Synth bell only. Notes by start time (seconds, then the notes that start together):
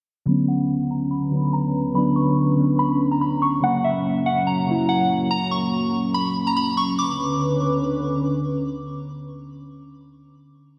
0.28 B5
0.48 F#5
0.91 A#5
1.11 B5
1.53 A#5
1.95 B5
2.16 C#6
2.79 B5
3.11 A#5
3.21 B5
3.42 C#6
3.64 F#5
3.84 E5
4.26 F#5
4.47 A#5
4.89 F#5
5.31 A#5
5.51 C#6
6.14 B5
6.47 A#5
6.57 B5
6.77 C#6
6.99 D6